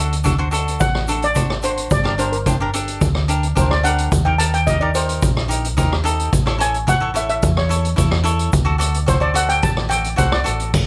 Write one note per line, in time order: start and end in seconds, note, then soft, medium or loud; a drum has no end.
0.00 0.77 D2 medium
0.00 0.14 D4 medium
0.00 0.14 F#4 medium
0.00 0.14 A4 medium
0.13 closed hi-hat medium
0.24 0.33 D4 medium
0.24 0.33 F#4 medium
0.24 0.34 A4 medium
0.24 kick medium
0.24 closed hi-hat medium
0.24 shaker medium
0.38 0.47 D4 medium
0.38 0.47 F#4 medium
0.38 0.48 C5 medium
0.51 0.85 D4 medium
0.51 0.86 F#4 medium
0.51 0.86 A4 medium
0.51 closed hi-hat medium
0.51 shaker medium
0.68 closed hi-hat medium
0.80 1.36 A1 medium
0.80 1.23 F#5 medium
0.80 kick loud
0.80 closed hi-hat medium
0.80 shaker loud
0.95 cross-stick medium
1.08 1.25 D4 medium
1.08 1.25 F#4 medium
1.08 1.25 A4 medium
1.08 closed hi-hat medium
1.08 shaker medium
1.22 1.66 D5 medium
1.22 closed hi-hat medium
1.35 1.88 G#1 medium
1.35 1.52 D4 medium
1.35 1.53 F#4 medium
1.35 1.53 C5 medium
1.35 kick medium
1.35 closed hi-hat medium
1.35 shaker loud
1.50 cross-stick medium
1.62 1.88 D4 medium
1.62 1.88 F#4 medium
1.62 1.92 C5 medium
1.62 1.89 C5 medium
1.62 closed hi-hat medium
1.62 shaker medium
1.77 closed hi-hat medium
1.90 2.98 G1 medium
1.90 2.05 D5 medium
1.90 kick loud
1.90 closed hi-hat medium
1.90 shaker medium
2.04 2.13 D4 medium
2.04 2.13 G4 medium
2.04 2.14 A#4 medium
2.04 2.18 D5 medium
2.04 cross-stick medium
2.18 2.35 D4 medium
2.18 2.36 G4 medium
2.18 2.36 A#4 medium
2.18 2.25 C5 medium
2.18 closed hi-hat medium
2.18 shaker medium
2.32 2.58 A#4 medium
2.32 closed hi-hat medium
2.46 2.55 D4 medium
2.46 2.55 G4 medium
2.46 2.55 C5 medium
2.46 kick medium
2.46 closed hi-hat medium
2.46 shaker medium
2.60 2.69 D4 medium
2.60 2.69 G4 medium
2.60 2.69 A#4 medium
2.73 3.07 D4 medium
2.73 3.07 G4 medium
2.73 3.08 A4 medium
2.73 closed hi-hat medium
2.73 shaker medium
2.88 closed hi-hat medium
3.01 3.53 D2 medium
3.01 kick loud
3.01 closed hi-hat medium
3.01 shaker medium
3.15 cross-stick medium
3.28 3.46 D4 medium
3.28 3.46 G4 medium
3.28 3.46 A#4 medium
3.28 closed hi-hat medium
3.28 shaker medium
3.43 closed hi-hat medium
3.55 4.09 D2 loud
3.55 3.73 D4 medium
3.55 3.73 G4 medium
3.55 3.74 A#4 medium
3.55 3.73 C5 medium
3.55 kick medium
3.55 closed hi-hat medium
3.55 shaker medium
3.71 3.84 D5 medium
3.71 cross-stick medium
3.83 4.09 D4 medium
3.83 4.09 G4 medium
3.83 4.10 A#4 medium
3.83 4.27 F#5 medium
3.83 closed hi-hat medium
3.83 shaker medium
3.98 closed hi-hat medium
4.12 5.19 D#2 medium
4.12 kick loud
4.12 closed hi-hat medium
4.12 shaker loud
4.25 4.34 D#4 medium
4.25 4.34 G4 medium
4.25 4.34 A#4 medium
4.25 4.32 G5 medium
4.38 4.56 D#4 medium
4.38 4.56 G4 medium
4.38 4.57 A#4 medium
4.38 4.52 A5 medium
4.38 closed hi-hat loud
4.38 shaker medium
4.54 4.68 G5 medium
4.54 closed hi-hat medium
4.67 4.76 D#4 medium
4.67 4.76 G4 medium
4.67 4.77 A#4 medium
4.67 4.80 D#5 medium
4.67 kick medium
4.67 closed hi-hat medium
4.67 shaker medium
4.81 4.89 D#4 medium
4.81 4.90 G4 medium
4.81 4.90 A#4 medium
4.81 4.95 D5 medium
4.95 5.28 D#4 medium
4.95 5.28 G4 medium
4.95 5.29 A#4 medium
4.95 6.29 C5 medium
4.95 closed hi-hat medium
4.95 shaker medium
5.09 closed hi-hat medium
5.22 5.78 A#1 medium
5.22 kick loud
5.22 closed hi-hat medium
5.22 shaker loud
5.37 cross-stick medium
5.48 5.66 D#4 medium
5.48 5.66 G4 medium
5.48 5.67 A#4 medium
5.48 closed hi-hat medium
5.48 shaker medium
5.65 closed hi-hat medium
5.77 6.30 D#2 medium
5.77 5.94 D#4 medium
5.77 5.95 G4 medium
5.77 5.95 A#4 loud
5.77 6.29 C5 medium
5.77 kick medium
5.77 closed hi-hat medium
5.77 shaker medium
5.92 cross-stick medium
6.04 6.30 D#4 loud
6.04 6.30 G4 medium
6.04 6.30 A4 loud
6.04 closed hi-hat medium
6.04 shaker medium
6.20 closed hi-hat medium
6.33 7.39 A1 medium
6.33 kick loud
6.33 closed hi-hat medium
6.33 shaker loud
6.46 6.55 E4 medium
6.46 6.55 A4 medium
6.46 6.56 C#5 medium
6.46 cross-stick medium
6.58 6.76 E4 medium
6.58 6.77 A4 medium
6.58 6.77 C#5 medium
6.58 6.89 G#5 loud
6.58 closed hi-hat medium
6.58 shaker medium
6.74 closed hi-hat medium
6.87 6.96 E4 medium
6.87 6.96 A4 medium
6.87 6.97 C#5 medium
6.87 7.17 F#5 loud
6.87 kick medium
6.87 closed hi-hat medium
6.87 shaker medium
7.00 7.10 E4 medium
7.00 7.10 A4 medium
7.00 7.10 C#5 medium
7.14 7.48 E4 medium
7.14 7.48 A4 medium
7.14 7.49 C#5 medium
7.14 7.23 E5 medium
7.14 closed hi-hat medium
7.14 shaker medium
7.29 7.58 E5 medium
7.29 closed hi-hat medium
7.42 7.95 E2 loud
7.42 kick loud
7.42 closed hi-hat medium
7.42 shaker loud
7.57 8.36 C#5 medium
7.57 cross-stick medium
7.69 7.87 E4 medium
7.69 7.87 A4 medium
7.69 7.87 C#5 medium
7.69 closed hi-hat medium
7.69 shaker medium
7.85 closed hi-hat medium
7.96 8.50 E2 medium
7.96 8.14 E4 medium
7.96 8.15 A4 medium
7.96 8.15 C#5 medium
7.96 kick medium
7.96 closed hi-hat medium
7.96 shaker medium
8.11 cross-stick medium
8.24 8.50 E4 medium
8.24 8.50 A4 medium
8.24 8.51 C#5 medium
8.24 closed hi-hat medium
8.24 shaker medium
8.39 closed hi-hat medium
8.53 9.60 D2 medium
8.53 kick loud
8.53 closed hi-hat medium
8.53 shaker loud
8.65 8.75 F#4 medium
8.65 8.75 A4 medium
8.65 8.75 D5 medium
8.78 8.97 F#4 medium
8.78 8.97 A4 medium
8.78 8.97 D5 loud
8.78 closed hi-hat medium
8.78 shaker medium
8.94 closed hi-hat medium
9.06 9.16 F#4 medium
9.06 9.17 A4 medium
9.06 9.17 C5 medium
9.06 9.22 C5 medium
9.06 kick medium
9.06 closed hi-hat medium
9.06 shaker medium
9.20 9.30 F#4 medium
9.20 9.30 A4 medium
9.20 9.36 D5 medium
9.20 9.30 D5 medium
9.34 9.69 F#4 medium
9.34 9.69 A4 medium
9.34 9.69 D5 medium
9.34 9.51 F#5 medium
9.34 closed hi-hat medium
9.34 shaker medium
9.49 9.64 G5 loud
9.49 closed hi-hat medium
9.62 10.16 A1 loud
9.62 9.92 A5 loud
9.62 kick loud
9.62 closed hi-hat medium
9.62 shaker medium
9.77 cross-stick medium
9.89 10.07 F#4 medium
9.89 10.08 A4 medium
9.89 10.08 D5 medium
9.89 10.16 G5 medium
9.89 closed hi-hat medium
9.89 shaker medium
10.04 closed hi-hat medium
10.16 10.44 C2 medium
10.16 10.35 F#4 medium
10.16 10.35 A4 medium
10.16 10.35 C5 medium
10.16 10.33 F#5 medium
10.16 kick medium
10.16 closed hi-hat medium
10.16 shaker medium
10.32 10.71 D5 medium
10.32 cross-stick medium
10.44 10.72 A1 medium
10.44 10.71 F#4 medium
10.44 10.71 A4 medium
10.44 10.71 D5 medium
10.44 closed hi-hat medium
10.44 shaker medium
10.60 closed hi-hat medium
10.74 10.87 G1 medium
10.74 kick loud
10.74 crash medium
10.74 shaker medium